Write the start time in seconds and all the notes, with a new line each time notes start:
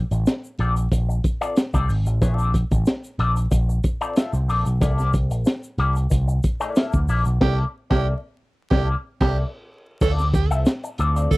0.11 A1, muted clean electric guitar stroke, closed hi-hat, shaker
0.26 muted clean electric guitar stroke, snare, closed hi-hat, shaker
0.44 shaker
0.59 A#1 C4 F4 A4 D5, closed hi-hat
0.76 muted clean electric guitar stroke, closed hi-hat, shaker
0.92 A#1, muted clean electric guitar stroke, kick, closed hi-hat, shaker
1.09 muted clean electric guitar stroke, shaker
1.24 kick, closed hi-hat, shaker
1.41 C4 F4 A4 D5, closed hi-hat, shaker
1.56 snare, closed hi-hat, shaker
1.74 C2 C4 F4 A4 D5, kick, closed hi-hat, shaker
1.89 G#1, muted clean electric guitar stroke, open hi-hat, shaker
2.06 A1, muted clean electric guitar stroke, closed hi-hat, shaker
2.21 A#1 B3 E4 G#4 C#5, kick, closed hi-hat, shaker
2.34 C4 F4 A4 D5
2.39 closed hi-hat, shaker
2.54 kick, closed hi-hat, shaker
2.71 A1, muted clean electric guitar stroke, kick, closed hi-hat, shaker
2.86 muted clean electric guitar stroke, snare, closed hi-hat, shaker
3.04 closed hi-hat, shaker
3.19 A#1 C4 F4 A4 D5, closed hi-hat
3.36 muted clean electric guitar stroke, closed hi-hat, shaker
3.51 A#1, muted clean electric guitar stroke, kick, closed hi-hat, shaker
3.69 muted clean electric guitar stroke, shaker
3.84 kick, closed hi-hat, shaker
4.01 C4 F4 A4 D5, closed hi-hat, shaker
4.16 C4 F4 A4 E5, snare, closed hi-hat, shaker
4.33 C2, muted clean electric guitar stroke, closed hi-hat, shaker
4.48 A#1 C4 F4 A4 D5, open hi-hat, shaker
4.66 B1, muted clean electric guitar stroke, closed hi-hat, shaker
4.81 C2 A#3 E4 A4 D5, kick, closed hi-hat, shaker
4.98 snare, closed hi-hat, shaker
5.14 kick, closed hi-hat, shaker
5.31 A#1, muted clean electric guitar stroke, closed hi-hat, shaker
5.45 muted clean electric guitar stroke, snare, closed hi-hat, shaker
5.63 closed hi-hat, shaker
5.78 C2 A#3 E4 A4 D5, closed hi-hat
5.96 muted clean electric guitar stroke, closed hi-hat, shaker
6.10 C2, muted clean electric guitar stroke, kick, closed hi-hat, shaker
6.27 muted clean electric guitar stroke, shaker
6.43 kick, closed hi-hat, shaker
6.60 A#3 E4 A4 D5, closed hi-hat, shaker
6.76 A#3 E4 A4 E5, snare, closed hi-hat, shaker
6.93 D2, muted clean electric guitar stroke, kick, shaker
7.08 A#1 A#3 E4 A4 D5, open hi-hat, shaker
7.25 B1, muted clean electric guitar stroke, closed hi-hat, shaker
7.41 C2 A#3 E4 G4 A4 D5, kick, snare, crash
7.90 C2 A#3 E4 G4 A4 D5, kick, snare
8.71 C2 A#3 E4 G4 A4 D5, kick, snare
9.20 C2 A#3 E4 G4 A4 D5, kick, snare, crash
10.01 D2 C4 F4 A4 D5, kick, crash, shaker
10.19 snare, shaker
10.34 G4, muted clean electric guitar stroke, kick, closed hi-hat, shaker
10.51 C2 C4 F4 A4 E5, closed hi-hat, shaker
10.66 muted clean electric guitar stroke, snare, closed hi-hat, shaker
10.84 muted clean electric guitar stroke, closed hi-hat, shaker
10.98 D2 C4 F4 A4 D5, closed hi-hat, shaker
11.16 C4 F4 A4 D5, closed hi-hat, shaker
11.31 D2 A4, kick, closed hi-hat, shaker